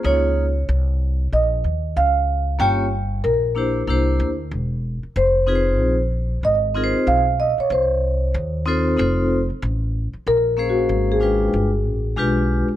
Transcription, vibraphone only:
X:1
M:4/4
L:1/8
Q:"Swing 16ths" 1/4=94
K:Db
V:1 name="Vibraphone"
[B,EFAd] z6 z | [B,DF=Gd] z2 [B,=D=EGc] [B,DEGc] z3 | z [CEFA_c=c] z3 [CEFABc] z2 | z3 [CEF=Ac] [CEFAc] z3 |
z [B,DAcf]2 [A,=DF_c=g] z2 [A,DF=G=B] z |]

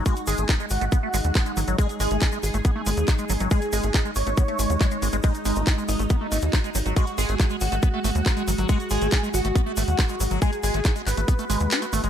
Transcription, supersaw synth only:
X:1
M:4/4
L:1/8
Q:1/4=139
K:G#phr
V:1 name="Supersaw synth"
F G z F4- F | G G z G4- G | G G z c4- c | D D z D4- D |
F G z F4- F | F G z F4- F | G G z B4- B |]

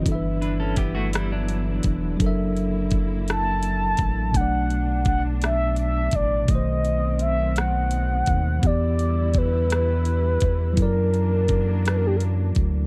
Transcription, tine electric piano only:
X:1
M:6/8
L:1/8
Q:3/8=56
K:Bm
V:1 name="Tine electric piano"
[E,DABe]6 | [F,DA^Ae]6 | [B,,A,Dd]6 | [B,,^D,A,=c]6 |
[E,B,Gd]6 | [F,EA^Ad]6 |]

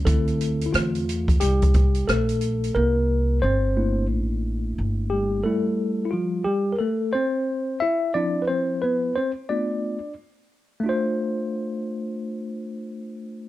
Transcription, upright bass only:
X:1
M:4/4
L:1/8
Q:"Swing 16ths" 1/4=89
K:Dm
V:1 name="Upright bass" clef=bass
D,,2 E,,2 C,,2 B,,,2 | C,,2 G,,,2 A,,,2 G,,,2 | z8 | z8 |
z8 |]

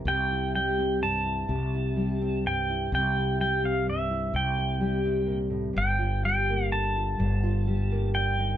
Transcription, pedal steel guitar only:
X:1
M:6/8
L:1/16
Q:3/8=42
K:Cdor
V:1 name="Pedal steel guitar"
g2 g2 a6 g2 | g2 g f =e2 g4 z2 | g2 g2 a6 g2 |]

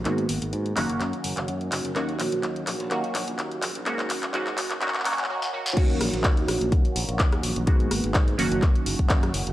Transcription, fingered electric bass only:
X:1
M:4/4
L:1/16
Q:"Swing 16ths" 1/4=126
K:Ebm
V:1 name="Fingered electric bass" clef=bass
A,,2 A,,, A,,, A,,2 G,,, G,,, G,, z G,,, G,,, G,,2 G,,, G,,, | E,,2 B,,, B,,, E,,2 B,,, B,,, E,, z B,,, B,,, E,,2 B,,, B,,, | A,,2 A,,, A,,, A,,2 G,,, G,,, G,,2 G,,, G,,, z4 | E,,2 B,,, B,,, E,,2 B,,, B,,, E,, z B,,, B,,, E,,2 B,,, B,,, |
A,,2 A,,, A,,, A,,2 G,,, G,,, G,, z G,,, G,,, G,,2 G,,, G,,, |]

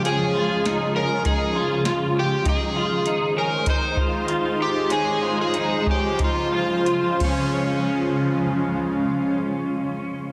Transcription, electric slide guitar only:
X:1
M:4/4
L:1/16
Q:1/4=95
K:Db
V:1 name="Electric slide guitar"
A6 B2 A4 z2 =G2 | A6 B2 c4 z2 =G2 | A3 A3 =G2 F6 D2- | D16 |]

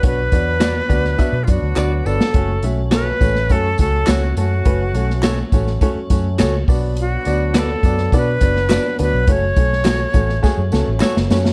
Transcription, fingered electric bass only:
X:1
M:4/4
L:1/16
Q:1/4=104
K:F#m
V:1 name="Fingered electric bass" clef=bass
B,,,2 E,,4 D,,2 z B,, F,, D,, D,,2 =G,,, z | F,,,2 B,,,4 A,,,2 F,,2 C,,2 C,,2 F,,2 | F,,,2 B,,,4 A,,,2 z2 F,,2 C,,2 B,,,2- | B,,,2 D,,4 F,,2 B,,2 F,,,3 z D,, B,,, |
F,,,2 B,,,4 A,,,2 z F,, C,, A,,, z F,,, F,,2 |]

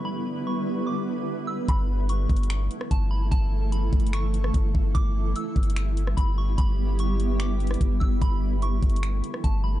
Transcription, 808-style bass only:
X:1
M:4/4
L:1/8
Q:1/4=147
K:Amix
V:1 name="808-style bass" clef=bass
z8 | G,,,3 G,,,2 z G,,,2 | G,,,3 G,,,3 G,,, G,,, | G,,,2 z G,,,3 G,,,2 |
G,,,6 G,,, G,,, | G,,,3 G,,,2 z G,,,2 |]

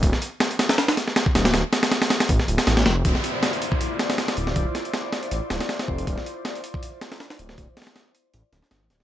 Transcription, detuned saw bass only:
X:1
M:4/4
L:1/16
Q:"Swing 16ths" 1/4=159
K:Dm
V:1 name="Detuned saw bass" clef=bass
D,,, z12 z D,,,2 | D,,, z6 z A,,, z D,,, z A,,,2 F,,,2 | D,,, z12 z D,,,2 | D,,, z6 z A,,, z D,,, z3 F,,,2 |
D,,, z12 z D,,,2 | D,,, z6 z A,,, z D,,, z G,,, A,,, D,,,2 |]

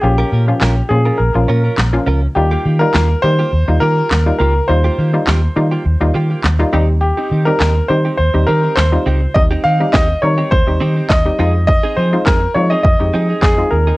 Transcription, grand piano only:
X:1
M:4/4
L:1/16
Q:1/4=103
K:Cphr
V:1 name="Grand piano"
G6 A2 B6 z2 | G3 B3 c4 B4 B2 | c12- c2 z2 | G3 B3 c2 c2 B2 c4 |
e2 f2 e2 d2 c4 e4 | e2 c2 B2 d e e4 A2 B2 |]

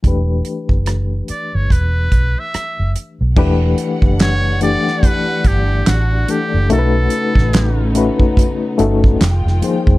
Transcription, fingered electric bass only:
X:1
M:4/4
L:1/16
Q:"Swing 16ths" 1/4=72
K:Edor
V:1 name="Fingered electric bass" clef=bass
E,,,2 z F,,,3 z G,,, E,,,2 B,,, z2 F,,, z B,,, | E,,,2 z F,,,4 z3 G,,,2 A,,,2 z F,,, | B,,,2 z A,,,4 z3 G,,,2 =F,,, F,,, z F,,, |]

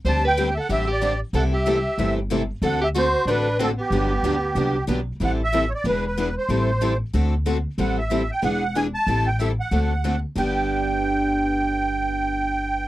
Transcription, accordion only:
X:1
M:4/4
L:1/16
Q:"Swing" 1/4=186
K:G
V:1 name="Accordion"
a2 g3- g/2 e/2 f2 e2 d4 z2 | f2 e8 z6 | f2 e2 c4 B4 A2 G2- | G12 z4 |
f2 e3- e/2 ^c/2 d2 B2 B4 =c2- | c6 z8 z2 | f2 e4 g2 f4 ^g2 a2- | a2 g2 e2 f8 z2 |
g16- | g16 |]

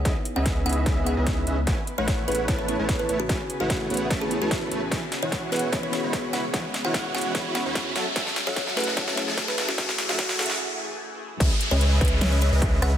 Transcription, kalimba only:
X:1
M:4/4
L:1/16
Q:1/4=148
K:C#m
V:1 name="Kalimba"
f z2 f z2 f z3 f3 z3 | z3 c c z B2 c c c3 B z F | F z2 F F z4 G z F4- F | z3 c c z B2 c c c4 f2- |
f z2 f z2 f z3 f3 z3 | z3 c z2 B2 c c c3 B z F | z3 F F z8 z3 | z3 c c z B2 c c c4 f2 |]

